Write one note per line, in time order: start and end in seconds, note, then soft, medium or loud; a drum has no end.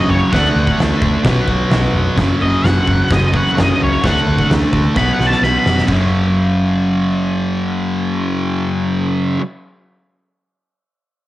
0.00 0.30 F#2 medium
0.00 0.31 C#3 medium
0.00 0.33 F#3 medium
0.08 0.23 F#1 medium
0.08 0.32 C#5 medium
0.08 floor tom medium
0.31 0.47 D2 medium
0.31 1.23 D3 medium
0.31 1.24 A3 medium
0.31 0.77 F#5 loud
0.31 kick loud
0.31 snare loud
0.31 floor tom medium
0.36 1.25 D4 medium
0.55 0.69 D2 medium
0.55 floor tom medium
0.67 kick medium
0.78 0.92 D2 medium
0.78 snare loud
0.78 floor tom medium
1.02 1.16 D2 medium
1.02 kick medium
1.02 floor tom medium
1.24 1.39 B1 medium
1.24 2.15 B2 medium
1.24 2.21 F#3 medium
1.24 kick loud
1.24 snare loud
1.24 floor tom medium
1.28 2.18 B3 medium
1.47 1.62 B1 medium
1.47 kick medium
1.47 floor tom medium
1.71 1.85 B1 medium
1.71 snare loud
1.71 floor tom medium
1.93 2.07 F1 medium
1.93 floor tom medium
2.17 2.31 F#1 medium
2.17 3.31 F#2 medium
2.17 3.33 C#3 loud
2.17 kick medium
2.17 snare loud
2.17 floor tom medium
2.21 3.32 F#3 loud
2.41 2.55 F#1 medium
2.41 2.66 D#5 medium
2.41 floor tom medium
2.64 2.78 F#1 medium
2.64 3.09 F#5 medium
2.64 snare loud
2.64 floor tom medium
2.87 3.01 F#1 medium
2.87 kick medium
2.87 floor tom medium
3.10 3.38 F#1 medium
3.10 3.34 D#5 medium
3.10 kick loud
3.10 snare loud
3.10 floor tom medium
3.33 3.54 F#2 medium
3.33 3.56 C#3 medium
3.33 3.59 F#3 medium
3.33 3.57 F#5 medium
3.33 kick medium
3.33 floor tom medium
3.55 3.72 F#1 medium
3.55 4.00 F#2 medium
3.55 4.01 C#3 medium
3.55 snare loud
3.55 floor tom medium
3.59 4.04 F#3 medium
3.59 3.81 D#5 loud
3.81 3.95 C#2 medium
3.81 4.04 C#5 medium
3.81 floor tom medium
4.02 4.17 D2 medium
4.02 4.94 D3 medium
4.02 4.95 A3 medium
4.02 4.49 F#5 medium
4.02 kick loud
4.02 snare loud
4.02 floor tom medium
4.06 4.96 D4 loud
4.26 4.40 D2 medium
4.26 floor tom medium
4.38 kick medium
4.50 4.64 D2 medium
4.50 snare loud
4.50 floor tom medium
4.73 4.87 D2 medium
4.73 kick medium
4.73 floor tom medium
4.95 5.10 B1 medium
4.95 5.87 B2 medium
4.95 5.88 F#3 medium
4.95 5.11 B5 medium
4.95 kick loud
4.95 snare medium
5.00 5.89 B3 medium
5.13 5.26 F#5 medium
5.19 5.33 B1 medium
5.19 snare medium
5.26 5.41 A5 medium
5.32 snare medium
5.41 5.56 B1 medium
5.41 5.58 B5 loud
5.41 snare medium
5.59 5.81 B5 loud
5.66 5.80 F1 medium
5.66 snare loud
5.78 snare medium
5.87 8.94 F#1 medium
5.87 9.37 F#2 medium
5.87 9.40 C#3 medium
5.87 kick medium
5.87 crash medium
5.92 9.42 F#3 loud